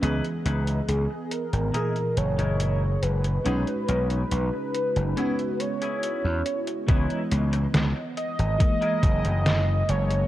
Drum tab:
HH |xxxxx-xxxxxxx-xx|xxxxx-xxxxxxx-xx|xxxxx-xxxxxxx-xx|
SD |----------------|----------------|----o-------o---|
BD |----------------|----------------|o-------o-o-----|